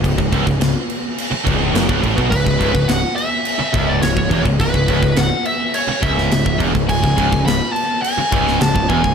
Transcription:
<<
  \new Staff \with { instrumentName = "Lead electric guitar" } { \time 4/4 \key cis \minor \tempo 4 = 105 r1 | b'4 fis''8 e''4~ e''16 d''16 cis''8. r16 | b'4 fis''8 e''8 cis''8 e''4 r8 | gis''4 b''8 a''8 gis''4 a''8 gis''8 | }
  \new Staff \with { instrumentName = "Distorted electric guitar" } { \clef bass \time 4/4 \key cis \minor cis,16 cis,16 cis,16 cis,16 cis,16 r4 r16 cis,8 fis,16 cis,16 a,16 b,16 | cis,16 cis,16 cis,16 cis,16 cis,16 r4 r16 cis,8 cis,16 cis,16 e,16 cis,16 | cis,16 cis,16 cis,16 cis,16 cis,16 r4 r16 cis,8 cis,16 cis,16 e,16 cis,16 | cis,16 cis,16 cis,16 cis,16 cis,16 r4 r16 cis,8 cis,16 cis,16 e,16 cis,16 | }
  \new Staff \with { instrumentName = "Distorted electric guitar" } { \clef bass \time 4/4 \key cis \minor cis,16 cis,16 cis,16 cis,16 cis,16 r4 r16 cis,8 fis,16 cis,16 a,16 b,16 | cis,16 cis,16 cis,16 cis,16 cis,16 r4 r16 cis,8 cis,16 cis,16 e,16 cis,16 | cis,16 cis,16 cis,16 cis,16 cis,16 r4 r16 cis,8 cis,16 cis,16 e,16 cis,16 | cis,16 cis,16 cis,16 cis,16 cis,16 r4 r16 cis,8 cis,16 cis,16 e,16 cis,16 | }
  \new Staff \with { instrumentName = "Distorted electric guitar" } { \clef bass \time 4/4 \key cis \minor cis,16 cis,16 cis,16 cis,16 cis,16 r4 r16 cis,8 fis,16 cis,16 a,16 b,16 | cis,16 cis,16 cis,16 cis,16 cis,16 r4 r16 cis,8 cis,16 cis,16 e,16 cis,16 | cis,16 cis,16 cis,16 cis,16 cis,16 r4 r16 cis,8 cis,16 cis,16 e,16 cis,16 | cis,16 cis,16 cis,16 cis,16 cis,16 r4 r16 cis,8 cis,16 cis,16 e,16 cis,16 | }
  \new Staff \with { instrumentName = "Picked electric bass" } { \clef bass \time 4/4 \key cis \minor cis,,16 cis,,16 cis,,16 cis,,16 cis,,16 r4 r16 cis,,8 fis,,16 cis,,16 a,,16 b,,16 | cis,,16 cis,,16 cis,,16 cis,,16 cis,,16 r4 r16 cis,,8 cis,,16 cis,,16 e,,16 cis,,16 | cis,,16 cis,,16 cis,,16 cis,,16 cis,,16 r4 r16 cis,,8 cis,,16 cis,,16 e,,16 cis,,16 | cis,,16 cis,,16 cis,,16 cis,,16 cis,,16 r4 r16 cis,,8 cis,,16 cis,,16 e,,16 cis,,16 | }
  \new DrumStaff \with { instrumentName = "Drums" } \drummode { \time 4/4 <cymc bd>16 bd16 <cymc bd>16 bd16 <cymc sn>8 cymc8 cymc8 <cymc bd>8 <cymc sn>16 bd16 <cymc bd>16 bd16 | <cymc bd>16 bd16 <cymc bd>16 bd16 <cymc sn>8 cymc8 cymc8 <cymc bd>8 <cymc sn>16 bd16 <cymc bd>16 bd16 | <cymc bd>16 bd16 <cymc bd>16 bd16 <cymc sn>8 cymc8 cymc8 <cymc bd>16 sn16 <cymc sn>16 bd16 <cymc bd>16 bd16 | <cymc bd>16 bd16 <cymc bd>16 bd16 <cymc sn>8 cymc8 cymc8 <cymc bd>16 sn16 <cymc sn>16 bd16 <cymc bd>16 bd16 | }
>>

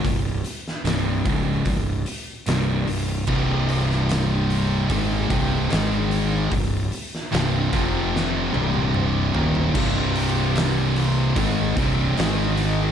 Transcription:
<<
  \new Staff \with { instrumentName = "Distorted electric guitar" } { \clef bass \time 4/4 \key c \minor \tempo 4 = 74 r1 | <c, g, c>2 <aes, ees aes>8 <c, g, c>8 <aes, ees aes>4 | <c, g,>8 r8 <c, g, c>8 <f, c f>4 <c, g, c>4 <ees, bes, ees>8 | <c, g, c>2 <aes, ees aes>8 <c, g, c>8 <aes, ees aes>4 | }
  \new Staff \with { instrumentName = "Distorted electric guitar" } { \clef bass \time 4/4 \key c \minor <c, g,>8 r8 <c, g, c>8 <des, aes, des>8 <c, g,>8 r8 <c, g, c>8 <c, g,>8 | <c, g, c>2 <aes, ees aes>8 <c, g, c>8 <aes, ees aes>4 | <c, g,>8 r8 <c, g, c>8 <f, c f>4 <c, g, c>4 <ees, bes, ees>8 | <c, g, c>2 <aes, ees aes>8 <c, g, c>8 <aes, ees aes>4 | }
  \new Staff \with { instrumentName = "Distorted electric guitar" } { \clef bass \time 4/4 \key c \minor <c, g,>8 r8 <c, g, c>8 <des, aes, des>8 <c, g,>8 r8 <c, g, c>8 <c, g,>8 | <c, g, c>2 <aes, ees aes>8 <c, g, c>8 <aes, ees aes>4 | <c, g,>8 r8 <c, g, c>8 <f, c f>4 <c, g, c>4 <ees, bes, ees>8 | <c, g, c>2 <aes, ees aes>8 <c, g, c>8 <aes, ees aes>4 | }
  \new Staff \with { instrumentName = "Fingered electric bass" } { \clef bass \time 4/4 \key c \minor c,,8 r8 c,,8 des,,8 c,,8 r8 c,,8 c,,8 | c,,2 aes,,8 c,,8 aes,,4 | c,,8 r8 c,,8 f,,4 c,,4 ees,,8 | c,,2 aes,,8 c,,8 aes,,4 | }
  \new DrumStaff \with { instrumentName = "Drums" } \drummode { \time 4/4 <hho bd>8 hho16 sn16 <hho sn>8 <hho bd>8 <hho bd>8 hho8 <hho sn>8 hho8 | <cymc bd>8 hho16 sn16 <hho sn>8 hho8 <hho bd>8 <hho bd>8 <hho sn>8 hho8 | <hho bd>8 hho16 sn16 <hho sn>8 <hho bd>8 sn8 tommh16 tommh16 toml8 tomfh16 tomfh16 | <cymc bd>8 hho8 <hho sn>8 hho8 <hho bd>8 <hho bd>8 <hho sn>8 hho8 | }
>>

